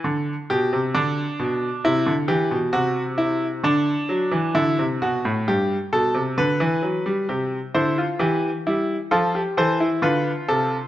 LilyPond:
<<
  \new Staff \with { instrumentName = "Grand piano" } { \time 4/4 \key c \major \tempo 4 = 66 << { r1 | r1 | r8 c''8 g'4 a'8 c''8 b'8 a'8 | } \\ { r8 g'8 d'4 e'8 g'8 fis'8 e'8 | d'4 e'8 fis'8 g'8 a'8 b'4 | g'8 e'16 f'16 r8 e'8 f'16 g'16 a'16 e'16 f'4 | } >> }
  \new Staff \with { instrumentName = "Grand piano" } { \clef bass \time 4/4 \key c \major d8 b,16 c16 d8 b,8 c16 d16 e16 b,16 c4 | d8 fis16 e16 d16 c16 b,16 a,16 g,8 b,16 c16 d16 e16 fis16 g16 | c8 d8 e8 g8 f8 e8 d8 c8 | }
>>